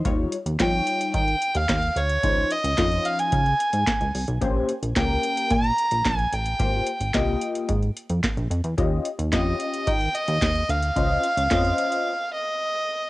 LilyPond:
<<
  \new Staff \with { instrumentName = "Fiddle" } { \time 4/4 \key ees \mixolydian \tempo 4 = 110 r4 g''4 g''8. f''8. des''8~ | des''8 ees''4 f''16 aes''4.~ aes''16 r8 | r4 g''4 bes''4 aes''8 g''8~ | g''4. r2 r8 |
r4 ees''4 g''8 ees''4 f''8~ | f''2~ f''8 ees''4. | }
  \new Staff \with { instrumentName = "Analog polysynth" } { \time 4/4 \key ees \mixolydian << { c''16 r2. r8. | r1 | r1 | r1 |
r1 | r1 | } \\ { <g ees' f' des''>8 r8 <g ees' f' des''>4 r2 | <f des' ees' c''>8 r8 <f des' ees' f'>4 r2 | <bes des' g' c''>8 r8 <bes des' g' bes'>4 r2 | <bes f' g' c''>8 r8 <bes f' g' ees''>4 r2 |
<des' f' g' ees''>8 r8 <des' f' g' ees''>4 r2 | <des' f' c'' ees''>8 r8 <des' f' c'' ees''>4 r2 | } >> }
  \new Staff \with { instrumentName = "Analog synth bass" } { \clef bass \time 4/4 \key ees \mixolydian ees,8 r16 ees,16 f,8 r8 ees8 r16 ees,16 ees,8 d,8 | des,8 r16 des,16 f,8 r8 des8 r16 aes,16 r16 des,16 c,16 ces,16 | bes,,8 r16 bes,,16 des,8 r8 bes,8 r16 bes,,16 bes,,8 a,,8 | aes,,8 r16 aes,,16 c,8 r8 aes,8 r16 f,16 r16 bes,,16 f,16 e,16 |
ees,8 r16 ees,16 f,8 r8 ees8 r16 ees,16 ees,8 d,8 | des,8 r16 des,16 f,8 r2 r8 | }
  \new DrumStaff \with { instrumentName = "Drums" } \drummode { \time 4/4 <hh bd>8 hh16 hh16 <hc hh bd sn>8 hh16 hh16 <hh bd>16 hh16 hh16 hh16 <hc hh bd sn>16 hh16 hh16 hh16 | <hh bd>8 hh16 hh16 <hc hh bd sn>16 hh16 hh16 hh16 <hh bd>16 hh16 hh16 hh16 <hc hh bd sn>16 hh16 hho16 hh16 | <hh bd>8 hh16 hh16 <hc hh bd sn>8 hh16 hh16 <hh bd>16 hh16 hh16 hh16 <hc hh bd sn>16 hh16 hh16 hh16 | <hh bd>8 hh16 hh16 <hc hh bd sn>8 hh16 hh16 <hh bd>16 hh16 hh16 hh16 <hc hh bd sn>16 hh16 hh16 hh16 |
<hh bd>8 hh16 hh16 <hc hh bd sn>8 hh16 hh16 <hh bd>16 hh16 hh16 hh16 <hc hh bd sn>16 hh16 hh16 hh16 | <hh bd>8 hh16 hh16 <hc hh bd sn>16 hh16 hh16 hh16 r4 r4 | }
>>